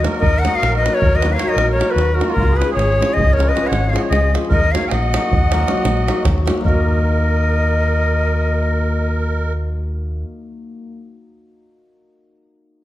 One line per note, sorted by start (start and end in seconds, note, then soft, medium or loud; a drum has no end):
0.02 0.44 F#3 medium
0.02 0.16 A#3 medium
0.02 0.16 D#4 medium
0.02 0.16 F#4 medium
0.02 0.18 A#4 medium
0.02 0.16 A#4 medium
0.02 0.06 B4 medium
0.02 davul high medium
0.14 0.40 D#5 loud
0.14 davul high soft
0.20 0.46 D#2 loud
0.20 0.43 A#4 loud
0.20 davul low medium
0.34 davul high soft
0.39 0.57 F#5 loud
0.45 0.85 F#3 medium
0.45 0.56 A#3 medium
0.45 0.56 D#4 medium
0.45 0.57 F#4 medium
0.45 0.57 A#4 medium
0.45 0.62 D#5 medium
0.45 davul high medium
0.55 0.83 A#4 medium
0.55 0.76 F5 loud
0.63 0.87 A#1 medium
0.63 davul high medium
0.75 0.96 D#5 loud
0.75 davul high soft
0.81 0.99 B4 medium
0.86 1.22 F#3 medium
0.86 0.97 A#3 medium
0.86 0.97 D#4 medium
0.86 0.97 F#4 medium
0.86 0.98 A#4 medium
0.86 davul high medium
0.94 1.17 C#5 loud
0.98 1.20 A#4 medium
0.98 davul low loud
1.03 1.35 D#2 medium
1.13 1.34 D#5 loud
1.13 davul high soft
1.17 1.36 B4 medium
1.22 1.39 F#3 medium
1.22 1.34 A#3 medium
1.22 1.34 D#4 medium
1.22 1.35 F#4 medium
1.22 1.35 A#4 medium
1.22 davul high medium
1.33 1.54 C#5 medium
1.33 1.50 F5 loud
1.39 1.76 F#3 medium
1.39 1.51 A#3 medium
1.39 1.51 D#4 medium
1.39 1.51 F#4 medium
1.39 1.51 A#4 medium
1.39 davul high medium
1.48 1.71 D#5 loud
1.52 1.80 A#1 loud
1.52 1.72 A#4 medium
1.58 davul high medium
1.71 1.92 A#4 medium
1.71 1.92 C#5 medium
1.78 2.18 F#3 medium
1.78 1.90 A#3 medium
1.78 1.91 D#4 medium
1.78 1.91 F#4 medium
1.78 1.91 A#4 medium
1.78 davul high medium
1.90 2.11 F#4 medium
1.90 2.16 B4 loud
1.96 2.20 D#2 medium
1.96 davul high medium
2.12 2.33 F#4 medium
2.12 2.30 A#4 medium
2.20 2.41 F#3 medium
2.20 2.32 A#3 medium
2.20 2.31 D#4 medium
2.20 2.32 F#4 medium
2.20 2.32 A#4 medium
2.20 davul high medium
2.28 2.53 F4 medium
2.28 2.58 A#4 loud
2.28 davul high soft
2.36 2.60 C#2 loud
2.36 davul low medium
2.51 2.68 G#4 medium
2.56 2.99 F3 medium
2.56 2.99 G#3 medium
2.56 2.71 C#4 medium
2.56 2.73 B4 loud
2.61 2.71 F4 medium
2.61 2.72 G#4 medium
2.61 davul high medium
2.69 3.08 G#4 medium
2.74 3.00 G#1 loud
2.74 3.15 C#5 loud
2.79 davul high medium
2.92 davul high soft
3.00 3.36 F3 medium
3.00 3.36 G#3 medium
3.00 3.12 C#4 medium
3.00 3.12 F4 medium
3.00 3.12 G#4 medium
3.00 davul high medium
3.10 3.33 G#4 medium
3.10 3.35 D#5 loud
3.17 3.49 C#2 loud
3.17 davul low loud
3.31 3.51 A#4 medium
3.31 3.50 C#5 loud
3.31 davul high soft
3.37 3.54 F3 medium
3.37 3.55 G#3 medium
3.37 3.49 C#4 medium
3.37 3.49 F4 medium
3.37 3.49 G#4 medium
3.37 davul high medium
3.48 3.68 B4 medium
3.48 3.68 D#5 loud
3.55 3.92 F3 medium
3.55 3.92 G#3 medium
3.55 3.66 C#4 medium
3.55 3.66 F4 medium
3.55 3.67 G#4 medium
3.55 davul high medium
3.64 3.85 C#5 loud
3.64 3.91 F#5 loud
3.71 3.95 G#1 loud
3.71 davul high medium
3.87 3.94 C#5 medium
3.87 4.00 F5 medium
3.93 4.33 F3 medium
3.93 4.33 G#3 medium
3.93 4.05 C#4 medium
3.93 4.05 F4 medium
3.93 4.05 G#4 medium
3.93 4.01 D#5 medium
3.93 davul high medium
3.98 4.09 C#5 medium
3.98 4.00 F#5 medium
4.08 4.35 C#2 medium
4.08 4.32 G#4 medium
4.08 4.32 D#5 loud
4.13 davul high medium
4.34 4.55 F3 medium
4.34 4.55 G#3 medium
4.34 4.45 C#4 medium
4.34 4.45 F4 medium
4.34 4.46 G#4 medium
4.34 davul high medium
4.45 davul high soft
4.49 4.75 D#2 loud
4.49 4.71 A#4 medium
4.49 4.73 D#5 loud
4.49 davul low medium
4.64 davul high soft
4.72 5.15 F#3 medium
4.72 4.85 A#3 medium
4.72 4.85 D#4 medium
4.72 4.85 F#4 medium
4.72 4.85 A#4 medium
4.72 4.85 C#5 medium
4.72 4.90 F5 loud
4.72 davul high medium
4.83 4.91 F5 medium
4.83 davul high soft
4.89 5.15 A#1 medium
4.89 6.23 D#5 medium
4.89 4.94 G#5 medium
4.89 davul high medium
4.93 6.25 F#5 loud
5.03 davul high soft
5.14 5.50 F#3 medium
5.14 5.26 A#3 medium
5.14 5.26 D#4 medium
5.14 5.26 F#4 medium
5.14 5.27 A#4 medium
5.14 davul high loud
5.23 davul high soft
5.31 5.63 D#2 medium
5.31 davul low loud
5.51 5.66 F#3 medium
5.51 5.62 A#3 medium
5.51 5.63 D#4 medium
5.51 5.63 F#4 medium
5.51 5.63 A#4 medium
5.51 davul high medium
5.60 davul high soft
5.67 6.06 F#3 medium
5.67 5.78 A#3 medium
5.67 5.79 D#4 medium
5.67 5.79 F#4 medium
5.67 5.79 A#4 medium
5.67 davul high medium
5.77 davul high soft
5.85 6.08 A#1 loud
5.85 davul high medium
5.97 davul high soft
6.07 6.44 F#3 medium
6.07 6.19 A#3 medium
6.07 6.19 D#4 medium
6.07 6.19 F#4 medium
6.07 6.19 A#4 medium
6.07 davul high medium
6.25 6.48 D#2 medium
6.25 davul high medium
6.25 davul low medium
6.38 davul high soft
6.46 6.69 F#3 medium
6.46 6.58 A#3 medium
6.46 6.58 D#4 medium
6.46 6.58 F#4 medium
6.46 6.58 A#4 medium
6.46 davul high medium
6.57 10.89 A#3 medium
6.57 davul high soft
6.64 10.23 D#2 loud
6.64 10.24 D#4 medium
6.64 10.23 F#4 medium
6.64 9.53 A#4 medium
6.64 9.53 D#5 medium
6.64 davul low medium
6.68 10.25 A#4 medium